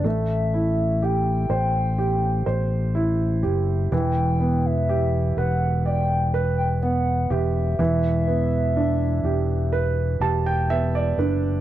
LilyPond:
<<
  \new Staff \with { instrumentName = "Soft synth lead" } { \time 4/4 \key e \minor \tempo 4 = 62 e''4 g''2~ g''8 r8 | g''8. e''8. fis''8 g''8. g''16 fis''8 e''8~ | e''2. r4 | }
  \new Staff \with { instrumentName = "Grand piano" } { \time 4/4 \key e \minor << { r1 | r1 | r2 r8 a''16 g''16 e''16 d''16 b'8 | } \\ { a8 e'8 g'8 c''8 g'8 c''8 e'8 g'8 | e8 b8 g'8 b'8 d''8 b'8 b8 g'8 | e8 b8 d'8 g'8 b'8 g'8 b8 d'8 | } >> }
  \new Staff \with { instrumentName = "Fingered electric bass" } { \clef bass \time 4/4 \key e \minor a,,4. a,,4 a,,4 fis,,8 | e,,4. e,,2 e,,8 | e,,4. e,,4 e,,4 fis,,8 | }
>>